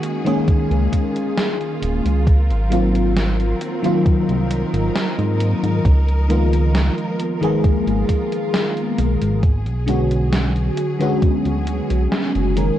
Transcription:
0.00 0.20 D#3 medium
0.00 2.23 D#3 medium
0.00 0.20 G#3 medium
0.00 0.20 A#3 medium
0.00 2.23 A#3 medium
0.00 0.21 C#4 medium
0.00 0.21 F#4 medium
0.00 0.46 F#4 medium
0.00 2.23 G#4 medium
0.00 closed hi-hat medium
0.24 2.23 D#3 loud
0.24 2.24 G#3 medium
0.24 2.24 A#3 medium
0.24 2.24 C#4 medium
0.24 2.25 G#4 loud
0.24 closed hi-hat medium
0.47 0.66 C#2 soft
0.47 4.02 F4 medium
0.47 kick loud
0.47 closed hi-hat medium
0.71 0.88 C#2 medium
0.71 closed hi-hat soft
0.92 kick medium
0.92 closed hi-hat medium
1.16 closed hi-hat medium
1.38 snare loud
1.38 closed hi-hat medium
1.61 closed hi-hat soft
1.82 2.01 D#1 loud
1.82 closed hi-hat medium
2.05 2.51 C#2 medium
2.05 closed hi-hat medium
2.27 5.81 F#3 medium
2.27 5.82 C4 medium
2.27 9.39 A#4 medium
2.27 kick loud
2.27 closed hi-hat medium
2.50 3.54 G#1 loud
2.50 closed hi-hat soft
2.70 3.78 D#3 medium
2.70 3.78 F#3 medium
2.70 3.79 A#3 medium
2.70 3.79 C4 medium
2.70 3.79 F4 loud
2.70 closed hi-hat loud
2.95 closed hi-hat medium
3.17 snare loud
3.17 closed hi-hat medium
3.40 closed hi-hat soft
3.61 closed hi-hat medium
3.82 5.81 D#3 loud
3.82 5.82 F#3 medium
3.82 5.82 A#3 medium
3.82 5.83 C4 medium
3.82 5.83 F4 loud
3.82 closed hi-hat medium
4.06 7.60 D#4 medium
4.06 kick loud
4.06 closed hi-hat medium
4.29 4.64 C2 medium
4.29 closed hi-hat soft
4.51 closed hi-hat medium
4.74 4.91 G#1 loud
4.74 closed hi-hat medium
4.96 snare loud
4.96 closed hi-hat medium
5.18 5.54 G#2 loud
5.18 closed hi-hat soft
5.40 closed hi-hat medium
5.63 5.81 G#2 medium
5.63 closed hi-hat medium
5.85 6.90 C#2 loud
5.85 9.40 F3 medium
5.85 kick loud
5.85 closed hi-hat medium
6.08 closed hi-hat soft
6.28 7.36 D#3 medium
6.28 7.36 G#3 medium
6.28 7.37 A#3 medium
6.28 7.37 B3 medium
6.28 7.38 F4 medium
6.28 closed hi-hat medium
6.53 closed hi-hat medium
6.75 snare loud
6.75 closed hi-hat medium
6.98 closed hi-hat soft
7.20 closed hi-hat medium
7.41 9.40 D#3 loud
7.41 9.40 G#3 medium
7.41 9.41 A#3 medium
7.41 9.41 B3 medium
7.41 9.41 G#4 loud
7.41 closed hi-hat medium
7.64 7.83 G#1 soft
7.64 9.41 F4 medium
7.64 kick loud
7.64 closed hi-hat medium
7.87 8.04 G#1 medium
7.87 closed hi-hat soft
8.09 kick medium
8.09 closed hi-hat loud
8.32 closed hi-hat medium
8.54 snare loud
8.54 closed hi-hat medium
8.77 closed hi-hat soft
8.98 9.17 B1 loud
8.98 closed hi-hat medium
9.22 9.67 G#1 medium
9.22 closed hi-hat medium
9.43 12.79 F#3 medium
9.43 12.79 G#4 medium
9.43 kick loud
9.43 closed hi-hat medium
9.66 10.70 B1 loud
9.66 closed hi-hat soft
9.86 10.94 D3 medium
9.86 10.95 G#3 medium
9.86 10.95 B3 medium
9.86 10.95 C#4 medium
9.86 10.96 F#4 loud
9.86 closed hi-hat medium
10.11 closed hi-hat medium
10.33 snare loud
10.33 closed hi-hat medium
10.56 closed hi-hat soft
10.77 closed hi-hat medium
10.99 12.51 D3 loud
10.99 12.52 G#3 medium
10.99 12.52 B3 medium
10.99 12.53 C#4 medium
10.99 12.53 F#4 loud
10.99 closed hi-hat medium
11.22 kick loud
11.22 closed hi-hat soft
11.45 11.81 D2 medium
11.45 closed hi-hat soft
11.67 closed hi-hat medium
11.90 12.08 B1 medium
11.90 closed hi-hat medium
12.12 snare loud
12.12 closed hi-hat medium
12.35 12.70 F#1 loud
12.35 closed hi-hat soft
12.56 12.79 D#3 medium
12.56 12.79 G#3 medium
12.56 12.79 A#3 medium
12.56 12.79 C#4 medium
12.56 12.79 A#4 medium
12.56 closed hi-hat medium

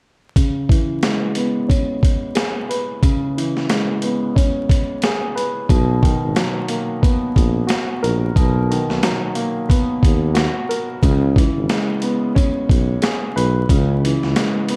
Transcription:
0.36 3.02 C#3 medium
0.36 kick loud
0.36 closed hi-hat loud
0.69 3.36 E3 medium
0.69 kick medium
0.69 closed hi-hat medium
1.03 3.68 G#3 medium
1.03 snare loud
1.03 closed hi-hat medium
1.35 4.02 B3 medium
1.35 closed hi-hat medium
1.68 4.34 C#4 loud
1.68 kick loud
1.68 closed hi-hat medium
2.03 kick medium
2.03 closed hi-hat medium
2.35 5.02 G#4 medium
2.35 snare loud
2.35 closed hi-hat medium
2.69 5.34 B4 medium
2.69 closed hi-hat medium
3.03 5.70 C#3 medium
3.03 kick loud
3.03 closed hi-hat loud
3.37 5.70 E3 medium
3.37 closed hi-hat medium
3.57 snare soft
3.69 5.70 G#3 medium
3.69 snare loud
3.69 closed hi-hat medium
4.02 5.70 B3 medium
4.02 closed hi-hat medium
4.35 5.69 C#4 loud
4.35 kick loud
4.35 closed hi-hat medium
4.69 kick medium
4.69 closed hi-hat medium
5.02 5.70 G#4 loud
5.02 snare loud
5.02 closed hi-hat medium
5.36 5.69 B4 medium
5.36 closed hi-hat medium
5.69 6.14 B1 loud
5.69 8.35 B2 medium
5.69 kick loud
5.69 closed hi-hat loud
6.02 8.69 D#3 medium
6.02 kick medium
6.02 closed hi-hat medium
6.24 6.34 G#1 medium
6.36 9.02 F#3 medium
6.36 snare loud
6.36 closed hi-hat medium
6.68 9.33 A#3 medium
6.68 closed hi-hat medium
7.02 9.67 B3 medium
7.02 kick loud
7.02 closed hi-hat medium
7.36 7.64 A#1 medium
7.36 kick medium
7.36 closed hi-hat medium
7.67 10.33 F#4 medium
7.67 snare loud
7.67 closed hi-hat medium
8.02 8.31 A#1 medium
8.02 10.68 A#4 loud
8.02 closed hi-hat medium
8.36 8.81 B1 loud
8.36 11.03 B2 medium
8.36 kick loud
8.36 closed hi-hat loud
8.71 11.03 D#3 medium
8.71 closed hi-hat medium
8.90 9.01 B1 medium
8.90 snare soft
9.03 11.03 F#3 medium
9.03 snare loud
9.03 closed hi-hat medium
9.35 11.02 A#3 medium
9.35 closed hi-hat medium
9.69 11.02 B3 medium
9.69 kick loud
9.69 closed hi-hat medium
10.03 10.48 D#2 loud
10.03 kick medium
10.03 closed hi-hat medium
10.34 11.02 F#4 medium
10.34 snare loud
10.34 closed hi-hat medium
10.69 11.03 A#4 medium
10.69 closed hi-hat medium
11.03 11.48 C#2 loud
11.03 13.68 C#3 medium
11.03 kick loud
11.03 closed hi-hat loud
11.36 14.03 E3 medium
11.36 kick medium
11.36 closed hi-hat medium
11.57 11.67 G#1 medium
11.69 14.35 G#3 medium
11.69 snare loud
11.69 closed hi-hat medium
12.02 14.69 B3 medium
12.02 closed hi-hat medium
12.35 14.76 C#4 loud
12.35 kick loud
12.35 closed hi-hat medium
12.69 12.97 B1 medium
12.69 kick medium
12.69 closed hi-hat medium
13.02 14.76 G#4 medium
13.02 snare loud
13.02 closed hi-hat medium
13.36 13.64 B1 loud
13.36 14.76 B4 medium
13.36 closed hi-hat medium
13.69 14.14 C#2 loud
13.69 14.76 C#3 medium
13.69 kick loud
13.69 closed hi-hat loud
14.04 14.76 E3 medium
14.04 closed hi-hat medium
14.23 14.34 C#2 medium
14.23 snare soft
14.36 14.76 G#3 medium
14.36 snare loud
14.36 closed hi-hat medium
14.69 14.76 B3 medium
14.69 closed hi-hat medium

